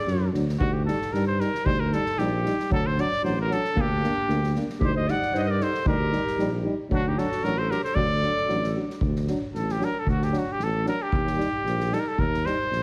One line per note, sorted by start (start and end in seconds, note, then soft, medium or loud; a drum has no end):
0.00 0.28 A4 medium
0.00 0.28 D5 medium
0.07 0.31 F#2 medium
0.07 snare soft
0.34 0.58 D2 medium
0.34 0.44 F#3 soft
0.34 0.44 D4 medium
0.34 snare soft
0.49 snare soft
0.59 0.89 D2 loud
0.59 0.71 G3 medium
0.59 0.70 D#4 medium
0.59 0.75 F#4 loud
0.59 kick medium
0.73 0.85 G4 medium
0.85 0.97 G3 medium
0.85 0.97 D#4 medium
0.85 1.14 A4 medium
0.85 snare soft
1.01 snare soft
1.13 1.42 G2 medium
1.13 1.24 G3 medium
1.13 1.23 D#4 medium
1.13 1.27 A#4 medium
1.13 snare soft
1.27 1.42 C5 medium
1.39 1.50 G3 medium
1.39 1.50 D#4 medium
1.39 1.67 A#4 medium
1.39 snare soft
1.54 snare soft
1.65 1.94 D2 medium
1.65 1.76 G3 medium
1.65 1.76 D#4 medium
1.65 1.82 C5 loud
1.65 kick medium
1.80 1.95 A#4 medium
1.92 2.03 G3 medium
1.92 2.03 D#4 medium
1.92 2.20 A4 medium
1.92 snare soft
2.06 snare soft
2.18 2.47 A#1 medium
2.18 2.29 G3 medium
2.18 2.30 D#4 medium
2.18 2.71 G4 medium
2.18 snare soft
2.45 2.55 G3 medium
2.45 2.56 D#4 medium
2.45 snare soft
2.59 snare soft
2.71 3.00 D2 loud
2.71 2.81 F#3 medium
2.71 2.82 D4 medium
2.71 2.88 A4 loud
2.71 kick medium
2.86 3.02 C5 medium
2.98 3.09 F#3 medium
2.98 3.09 D4 medium
2.98 3.23 D5 loud
2.98 snare soft
3.12 snare soft
3.23 3.53 A1 medium
3.23 3.34 F#3 medium
3.23 3.35 D4 medium
3.23 3.37 C5 medium
3.23 snare soft
3.41 3.54 A#4 medium
3.49 3.60 F#3 medium
3.49 3.62 D4 medium
3.49 3.82 A4 loud
3.49 snare soft
3.64 snare soft
3.75 4.04 D2 medium
3.75 3.86 A#3 medium
3.75 4.55 D4 medium
3.75 3.88 D4 medium
3.75 kick medium
3.81 4.57 G4 loud
4.03 4.13 A#3 medium
4.03 4.13 D4 medium
4.03 snare soft
4.28 4.57 D2 medium
4.28 4.39 A#3 medium
4.28 4.40 D4 medium
4.28 snare soft
4.43 snare soft
4.55 4.67 A#3 soft
4.55 4.66 D4 medium
4.55 snare soft
4.69 snare soft
4.80 5.09 D2 loud
4.80 4.93 G3 medium
4.80 4.93 D#4 medium
4.80 4.93 G4 medium
4.80 4.95 C5 medium
4.80 kick medium
4.93 5.09 C5 medium
4.93 5.12 D#5 medium
5.07 5.17 G3 medium
5.07 5.18 D#4 medium
5.07 5.35 D5 medium
5.07 5.38 F#5 medium
5.07 snare soft
5.22 snare soft
5.33 5.62 G2 medium
5.33 5.43 G3 medium
5.33 5.45 D#4 medium
5.33 5.39 C5 medium
5.33 snare soft
5.37 5.49 C5 medium
5.37 5.42 D5 medium
5.37 5.41 D#5 medium
5.37 5.45 F#5 medium
5.44 5.62 A#4 medium
5.44 5.52 D#5 medium
5.51 5.64 D5 medium
5.60 5.71 G3 medium
5.60 5.71 D#4 medium
5.60 5.86 A4 medium
5.60 5.87 C5 medium
5.60 snare soft
5.74 snare soft
5.85 6.15 D2 loud
5.85 5.97 G3 medium
5.85 5.96 D#4 medium
5.85 6.61 G4 medium
5.85 6.62 A#4 loud
5.85 kick loud
6.11 6.22 G3 medium
6.11 6.22 D#4 medium
6.11 snare soft
6.27 snare soft
6.38 6.67 A#1 medium
6.38 6.49 G3 medium
6.38 6.49 D#4 medium
6.38 snare soft
6.63 6.74 G3 medium
6.63 6.74 D#4 medium
6.90 7.19 D2 medium
6.90 7.01 F#3 medium
6.90 7.02 D4 medium
6.90 7.09 D4 medium
6.90 kick medium
6.94 7.10 F#4 loud
7.07 7.21 D#4 medium
7.07 7.20 G4 medium
7.17 7.27 F#3 medium
7.17 7.27 D4 medium
7.17 7.46 F#4 medium
7.17 7.45 A4 medium
7.17 snare soft
7.31 snare soft
7.42 7.72 A1 medium
7.42 7.53 F#3 medium
7.42 7.53 D4 medium
7.42 7.62 F#4 medium
7.42 7.60 A#4 medium
7.42 snare soft
7.58 7.74 A4 medium
7.58 7.72 C5 medium
7.68 7.79 F#3 medium
7.68 7.80 D4 medium
7.68 7.83 A#4 medium
7.68 snare soft
7.72 7.84 G4 medium
7.84 8.00 A4 medium
7.84 7.96 C5 loud
7.84 snare soft
7.95 8.25 D2 loud
7.95 8.06 F#3 medium
7.95 8.07 D4 medium
7.95 8.74 D5 loud
7.95 kick medium
8.00 8.77 A4 medium
8.22 8.33 F#3 medium
8.22 8.33 D4 medium
8.22 snare soft
8.37 snare soft
8.48 8.78 A1 medium
8.48 8.58 F#3 medium
8.48 8.60 D4 medium
8.48 snare soft
8.63 snare soft
8.75 8.85 F#3 medium
8.75 8.86 D4 medium
8.90 snare soft
9.01 9.30 D2 medium
9.01 kick medium
9.15 snare soft
9.27 9.38 F#3 medium
9.27 9.39 D4 medium
9.27 snare soft
9.54 9.83 A1 medium
9.54 9.73 A4 medium
9.54 snare soft
9.69 9.86 G4 medium
9.69 snare soft
9.79 9.90 F#3 medium
9.79 9.91 D4 medium
9.79 snare soft
9.84 10.01 A#4 medium
9.99 10.09 A4 medium
10.06 10.36 D2 medium
10.06 10.25 F#4 medium
10.06 kick medium
10.21 10.40 G4 medium
10.21 snare soft
10.31 10.42 F#3 medium
10.31 10.44 D4 medium
10.31 snare soft
10.38 10.54 F#4 medium
10.52 10.65 G4 medium
10.59 10.88 A1 medium
10.59 snare soft
10.63 10.88 A4 medium
10.85 10.96 F#3 medium
10.85 10.96 D4 medium
10.85 11.04 A#4 medium
10.85 snare soft
11.02 11.95 G4 medium
11.12 11.42 D#2 medium
11.12 kick medium
11.27 snare soft
11.37 11.48 G3 medium
11.37 11.50 D#4 medium
11.37 snare soft
11.65 11.94 A#1 medium
11.65 snare soft
11.80 snare soft
11.91 12.02 G3 medium
11.91 12.04 D#4 medium
11.91 12.01 A4 medium
11.91 snare soft
12.00 12.09 A#4 medium
12.08 12.21 A4 medium
12.18 12.47 D#2 loud
12.18 12.47 A#4 loud
12.18 kick medium
12.34 snare soft
12.45 12.56 G3 medium
12.45 12.57 D#4 medium
12.45 12.83 C5 loud
12.45 snare soft
12.71 12.83 A#1 medium
12.71 snare soft